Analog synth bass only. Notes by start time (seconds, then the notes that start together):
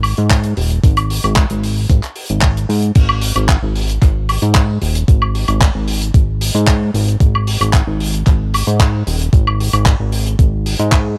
Already playing: G#1
0.18 G#2
0.57 D#1
0.84 G#1
1.24 G#1
1.51 G#1
1.90 G#1
2.30 G#1
2.69 G#2
2.96 G#1
3.36 G#1
3.63 G#1
4.02 G#1
4.42 G#2
4.82 D#1
5.08 G#1
5.49 G#1
5.75 G#1
6.14 G#1
6.55 G#2
6.94 G#1
7.21 G#1
7.61 G#1
7.87 G#1
8.27 G#1
8.67 G#2
9.07 D#1
9.33 G#1
9.73 G#1
10.00 G#1
10.39 G#1
10.79 G#2